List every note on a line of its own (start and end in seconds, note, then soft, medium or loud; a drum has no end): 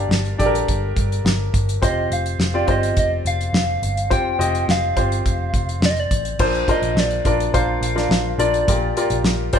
0.00 0.35 G2 soft
0.00 0.38 D4 medium
0.00 0.39 G4 medium
0.00 0.46 A#4 medium
0.00 0.39 D5 medium
0.00 0.65 D5 loud
0.00 0.27 F5 medium
0.09 0.33 G1 medium
0.09 snare medium
0.25 closed hi-hat soft
0.38 0.62 A#1 medium
0.38 1.30 D4 medium
0.38 1.30 G4 medium
0.38 0.46 A4 soft
0.38 1.30 D5 medium
0.38 kick medium
0.38 closed hi-hat medium
0.46 1.33 A#4 medium
0.55 closed hi-hat soft
0.68 0.91 G1 medium
0.68 kick medium
0.68 closed hi-hat medium
0.96 1.20 G1 medium
0.96 kick medium
0.96 closed hi-hat medium
1.12 closed hi-hat soft
1.25 1.48 G1 loud
1.25 snare medium
1.53 1.77 G1 medium
1.53 kick medium
1.53 closed hi-hat medium
1.69 closed hi-hat soft
1.82 2.06 F1 medium
1.82 2.39 C4 medium
1.82 2.39 F4 medium
1.82 2.39 G4 medium
1.82 2.39 C5 medium
1.82 2.14 D#5 loud
1.82 kick medium
1.82 closed hi-hat medium
2.10 2.34 F1 medium
2.10 2.72 F5 medium
2.10 closed hi-hat medium
2.26 closed hi-hat soft
2.39 2.62 F1 medium
2.39 snare medium
2.54 2.65 C4 medium
2.54 2.65 F4 medium
2.54 2.65 G4 medium
2.54 2.65 D5 medium
2.67 2.91 G1 medium
2.67 3.58 C4 medium
2.67 3.59 F4 medium
2.67 3.59 G4 medium
2.67 3.59 C5 medium
2.67 2.98 D#5 medium
2.67 kick medium
2.67 closed hi-hat medium
2.83 closed hi-hat soft
2.96 3.20 F1 medium
2.96 3.11 D#5 medium
2.96 kick medium
2.96 closed hi-hat medium
3.25 3.48 F1 medium
3.25 4.14 F5 loud
3.25 closed hi-hat medium
3.41 closed hi-hat soft
3.53 3.77 F1 medium
3.53 snare loud
3.82 4.11 G1 medium
3.82 closed hi-hat medium
3.97 closed hi-hat soft
4.10 4.34 F1 loud
4.10 4.33 C4 medium
4.10 4.33 F4 medium
4.10 4.33 G4 medium
4.10 4.33 C5 medium
4.10 4.72 G5 loud
4.10 kick medium
4.10 closed hi-hat medium
4.39 4.63 F1 medium
4.39 4.85 C4 medium
4.39 4.85 F4 medium
4.39 4.85 G4 medium
4.39 4.85 D#5 medium
4.39 closed hi-hat medium
4.55 closed hi-hat soft
4.68 4.91 F1 medium
4.68 5.84 F5 medium
4.68 snare medium
4.96 5.20 G1 medium
4.96 5.87 C4 medium
4.96 5.88 F4 medium
4.96 5.88 G4 medium
4.96 5.88 C5 medium
4.96 kick medium
4.96 closed hi-hat medium
5.12 closed hi-hat soft
5.25 5.49 F1 medium
5.25 kick medium
5.25 closed hi-hat medium
5.53 5.77 F1 medium
5.53 kick medium
5.53 closed hi-hat medium
5.69 closed hi-hat soft
5.81 6.05 F1 medium
5.81 snare loud
5.85 5.92 D5 medium
5.91 6.01 D#5 medium
5.96 6.44 D5 loud
5.96 closed hi-hat soft
6.11 6.34 A1 medium
6.11 kick medium
6.11 closed hi-hat medium
6.25 closed hi-hat soft
6.39 6.63 A#1 medium
6.39 7.21 A#2 soft
6.39 6.62 D4 medium
6.39 6.62 F4 medium
6.39 6.63 A#4 medium
6.39 6.62 C5 medium
6.39 6.69 C5 medium
6.39 kick loud
6.39 crash medium
6.54 closed hi-hat soft
6.68 7.14 D4 medium
6.68 7.14 F4 medium
6.68 7.14 A#4 medium
6.68 7.14 C5 medium
6.68 7.01 D#5 medium
6.68 kick medium
6.68 closed hi-hat medium
6.82 6.94 A#1 medium
6.82 closed hi-hat soft
6.95 7.19 A#1 medium
6.95 snare medium
7.00 7.56 D5 medium
7.11 closed hi-hat soft
7.25 7.48 A#1 medium
7.25 7.48 D4 medium
7.25 7.48 F4 medium
7.25 7.48 A#4 medium
7.25 7.49 D5 medium
7.25 kick medium
7.25 closed hi-hat medium
7.40 closed hi-hat medium
7.53 7.77 A#1 medium
7.53 7.88 D4 medium
7.53 7.88 F4 medium
7.53 7.88 A#4 medium
7.53 7.88 C5 medium
7.53 7.83 F5 medium
7.53 kick medium
7.53 closed hi-hat medium
7.81 8.05 A#1 medium
7.81 8.36 F5 loud
7.81 closed hi-hat medium
7.95 8.30 D4 medium
7.95 8.30 F4 soft
7.95 8.30 A#4 medium
7.95 8.31 D5 medium
7.95 snare soft
7.95 closed hi-hat soft
8.09 8.33 A#1 medium
8.09 snare medium
8.38 8.62 A#1 medium
8.38 8.62 D4 medium
8.38 8.62 F4 medium
8.38 8.62 A#4 medium
8.38 9.21 D5 loud
8.38 8.62 D5 medium
8.38 closed hi-hat medium
8.54 closed hi-hat soft
8.68 8.91 A#1 loud
8.68 9.50 A#2 medium
8.68 8.91 F4 medium
8.68 8.91 G4 medium
8.68 8.91 A#4 medium
8.68 8.91 D5 medium
8.68 kick loud
8.68 closed hi-hat medium
8.97 9.42 F4 medium
8.97 9.42 G4 medium
8.97 9.42 A#4 medium
8.97 9.42 D5 medium
8.97 closed hi-hat medium
9.10 9.22 A#1 medium
9.10 closed hi-hat medium
9.24 9.48 A#1 medium
9.24 snare medium
9.53 9.59 A#1 medium
9.53 9.59 F4 medium
9.53 9.59 G4 medium
9.53 9.59 A#4 medium
9.53 9.59 C5 medium
9.53 9.59 D5 medium
9.53 kick medium
9.53 closed hi-hat medium